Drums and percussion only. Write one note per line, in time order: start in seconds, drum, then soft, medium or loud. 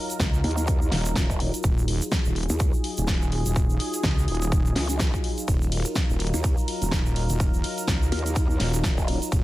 0.10 closed hi-hat medium
0.10 shaker medium
0.20 kick loud
0.20 snare loud
0.20 closed hi-hat medium
0.20 shaker medium
0.34 shaker soft
0.44 open hi-hat loud
0.51 closed hi-hat medium
0.57 closed hi-hat medium
0.57 shaker medium
0.67 kick loud
0.67 closed hi-hat medium
0.67 shaker medium
0.82 shaker soft
0.92 snare medium
0.92 open hi-hat loud
1.05 closed hi-hat medium
1.05 shaker medium
1.16 kick loud
1.16 snare loud
1.16 closed hi-hat medium
1.16 shaker medium
1.30 kick medium
1.30 shaker soft
1.40 open hi-hat loud
1.54 closed hi-hat medium
1.54 shaker medium
1.63 kick loud
1.63 closed hi-hat medium
1.63 shaker medium
1.78 shaker soft
1.88 open hi-hat loud
2.02 closed hi-hat soft
2.02 shaker medium
2.12 kick loud
2.12 snare loud
2.12 closed hi-hat medium
2.12 shaker medium
2.25 shaker soft
2.36 open hi-hat medium
2.43 closed hi-hat medium
2.49 closed hi-hat medium
2.49 shaker medium
2.59 kick loud
2.59 closed hi-hat medium
2.59 shaker medium
2.73 shaker soft
2.84 open hi-hat loud
2.98 closed hi-hat medium
2.98 shaker medium
3.08 kick loud
3.08 snare loud
3.08 closed hi-hat medium
3.08 shaker medium
3.22 shaker soft
3.32 open hi-hat medium
3.46 closed hi-hat medium
3.46 shaker medium
3.56 kick loud
3.56 closed hi-hat medium
3.56 shaker medium
3.70 shaker soft
3.80 open hi-hat loud
3.94 closed hi-hat medium
3.94 shaker medium
4.03 kick loud
4.03 snare loud
4.03 closed hi-hat medium
4.03 shaker medium
4.18 shaker soft
4.28 open hi-hat loud
4.35 closed hi-hat medium
4.42 closed hi-hat soft
4.42 shaker medium
4.52 kick loud
4.52 closed hi-hat medium
4.52 shaker medium
4.66 shaker soft
4.75 snare medium
4.75 open hi-hat loud
4.89 closed hi-hat medium
4.89 shaker medium
4.99 kick loud
4.99 snare loud
4.99 closed hi-hat medium
4.99 shaker medium
5.14 kick medium
5.14 shaker soft
5.24 open hi-hat medium
5.38 closed hi-hat medium
5.38 shaker medium
5.48 kick loud
5.48 closed hi-hat medium
5.48 ride medium
5.48 shaker medium
5.62 shaker soft
5.72 open hi-hat loud
5.72 ride medium
5.85 closed hi-hat soft
5.85 shaker medium
5.95 kick loud
5.95 snare loud
5.95 closed hi-hat medium
5.95 ride medium
5.95 shaker medium
6.10 shaker soft
6.20 open hi-hat medium
6.20 ride medium
6.27 closed hi-hat medium
6.34 closed hi-hat medium
6.34 shaker medium
6.44 kick loud
6.44 closed hi-hat medium
6.44 ride medium
6.44 shaker medium
6.58 shaker soft
6.68 open hi-hat loud
6.68 ride medium
6.82 closed hi-hat soft
6.82 shaker medium
6.91 kick loud
6.91 snare loud
6.91 closed hi-hat medium
6.91 ride medium
6.91 shaker medium
7.06 shaker soft
7.16 open hi-hat medium
7.16 ride medium
7.30 closed hi-hat medium
7.30 shaker medium
7.40 kick loud
7.40 closed hi-hat medium
7.40 ride medium
7.40 shaker medium
7.54 shaker soft
7.64 open hi-hat loud
7.64 ride medium
7.78 closed hi-hat medium
7.78 shaker medium
7.88 kick loud
7.88 snare loud
7.88 closed hi-hat medium
7.88 ride medium
7.88 shaker medium
8.02 shaker soft
8.12 open hi-hat medium
8.12 ride medium
8.19 closed hi-hat medium
8.26 closed hi-hat medium
8.26 shaker medium
8.36 kick loud
8.36 closed hi-hat medium
8.36 ride medium
8.36 shaker medium
8.50 shaker soft
8.60 snare medium
8.60 open hi-hat loud
8.60 ride medium
8.74 closed hi-hat medium
8.74 shaker medium
8.84 kick loud
8.84 snare loud
8.84 closed hi-hat medium
8.84 ride medium
8.84 shaker medium
8.98 kick medium
8.98 shaker soft
9.08 open hi-hat medium
9.08 ride medium
9.22 closed hi-hat medium
9.22 shaker medium
9.32 kick loud
9.32 closed hi-hat medium
9.32 ride medium
9.32 shaker medium